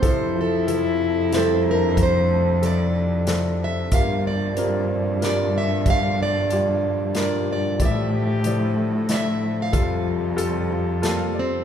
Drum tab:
HH |x-x-x-|x-x-x-|x-x-x-|x-x-x-|
SD |----o-|----o-|----o-|----o-|
BD |o-----|o-----|o-----|o-----|

HH |x-x-x-|x-x-x-|
SD |----o-|----o-|
BD |o-----|o-----|